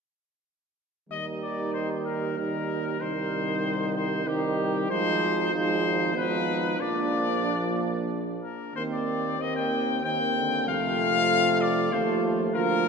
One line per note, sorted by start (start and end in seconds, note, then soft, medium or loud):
1.09 2.97 D#2 medium
1.09 2.33 D#3 medium
1.09 2.33 G3 medium
1.09 2.34 D#4 medium
1.09 1.25 D#5 medium
1.42 1.73 D5 medium
1.73 1.88 C5 medium
2.05 2.37 A#4 medium
2.37 3.00 D#3 medium
2.37 3.00 G3 medium
2.37 2.99 D#4 soft
2.37 3.02 A#4 medium
3.00 4.86 C2 medium
3.00 4.24 D#3 medium
3.00 4.24 G3 medium
3.00 4.23 D#4 medium
3.00 3.95 C5 medium
3.95 4.29 C5 medium
4.25 4.88 D#3 medium
4.25 4.91 G3 medium
4.25 4.88 D#4 medium
4.25 4.89 G4 medium
4.89 6.76 G#1 medium
4.89 5.51 F3 medium
4.89 5.51 G#3 medium
4.89 5.51 D#4 medium
4.89 5.52 C5 loud
5.52 6.15 F3 medium
5.52 6.17 G#3 medium
5.52 6.15 D#4 medium
5.52 6.15 C5 loud
6.15 6.78 F3 medium
6.15 6.79 B3 medium
6.15 6.80 D#4 medium
6.15 6.82 B4 medium
6.79 8.38 A#1 medium
6.79 8.39 F3 medium
6.79 8.39 A#3 medium
6.79 8.41 D4 medium
6.79 8.09 D5 medium
8.43 8.72 A#4 medium
8.72 10.63 D#2 medium
8.72 9.36 D#3 medium
8.72 9.35 A#3 medium
8.72 9.34 C4 medium
8.72 8.82 C5 medium
8.93 9.42 D5 medium
9.39 10.02 D#3 medium
9.39 10.02 A#3 medium
9.39 10.02 C4 medium
9.39 9.56 D#5 medium
9.56 10.03 G5 medium
10.03 10.18 D#3 medium
10.03 10.69 A#3 medium
10.03 10.68 C4 medium
10.03 10.66 G5 medium
10.36 10.69 D3 medium
10.67 11.94 F2 medium
10.67 11.94 C3 medium
10.67 11.92 A3 medium
10.67 11.91 F4 medium
10.67 11.63 F5 loud
11.61 11.94 D5 medium
11.92 12.54 D#2 medium
11.92 12.54 F3 medium
11.92 12.57 A3 medium
11.92 12.53 F4 medium
11.92 12.24 C5 medium
12.54 12.88 D2 medium
12.54 12.88 F3 medium
12.54 12.88 A#3 medium
12.54 12.88 F4 medium
12.54 12.88 A#4 loud